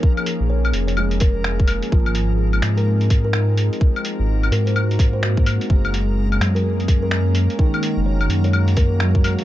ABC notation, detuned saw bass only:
X:1
M:4/4
L:1/16
Q:"Swing 16ths" 1/4=127
K:Abmix
V:1 name="Detuned saw bass" clef=bass
z3 B,,,3 F,,,8- F,,, z | A,,,6 A,,8- A,, z | z3 A,,,3 A,,8- A,, z | G,,,6 G,,8- G,, z |
z3 G,,,3 G,,8- G,, z |]